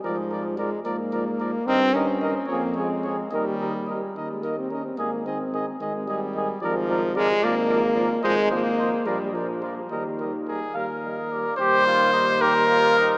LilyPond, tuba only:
\new Staff \with { instrumentName = "Tuba" } { \clef bass \time 6/8 \key bes \dorian \tempo 4. = 73 aes,4. aes,4. | g,4. f,4. | ees,4. ees,4. | aes,,4. aes,,4. |
aes,,4. aes,,4. | \key ees \major aes,,4. bes,,4. | ees,4. ees,4. | ees,2. | }